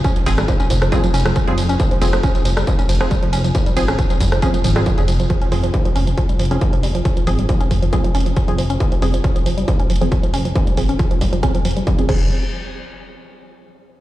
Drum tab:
CC |--------------------------------|--------------------------------|--------------------------------|--------------------------------|
RD |----x-------x-------x-------x---|----x-------x-------x-------x---|----x-------x-------x-------x---|--------------------------------|
HH |x-x-o-x-x-x-o-x-x-x-oxx-x-x-o-x-|x-x-o-x-x-x-o-x-x-x-oxx-x-x-o-x-|x-x-o-x-x-x-o-x-x-x-oxx-x-x-o-x-|x-x-o-x-x-x-o-x-x-x-oxx-x-x-o-x-|
TB |x---x-x-x-x-x-x-x-x-x---x---x-x-|x---x-x-x-x-x-x-x-x-x-x-x---x-x-|x-x-x-x-x-x-x-x-x-x-x-x-x-x-x-x-|--------------------------------|
SD |------r-------r-------r---------|------r-------r-------r---------|------r-------r-------r---------|--------------------------------|
BD |o-------o---o---o-------o-------|o-------o-------o-------o-------|o-------o---o---o-------o-------|o-------o-------o-------o-------|

CC |--------------------------------|--------------------------------|----------------------------x---|--------------------------------|
RD |--------------------------------|--------------------------------|--------------------------------|--------------------------------|
HH |x-x-o-x-x-x-o-x-x-x-oxx-x-x-o-x-|x-x-o-x-x-x-o-x-x-x-oxx-x-x-o-x-|x-x-o-x-x-x-o-x-x-x-oxx-x-x-----|--------------------------------|
TB |--------------------------------|--------------------------------|--------------------------------|--------------------------------|
SD |--------------------------------|--------------------------------|--------------------------------|--------------------------------|
BD |o-------o---o---o-------o-------|o-------o-------o-------o-------|o-------o---o---o-------o---o---|--------------------------------|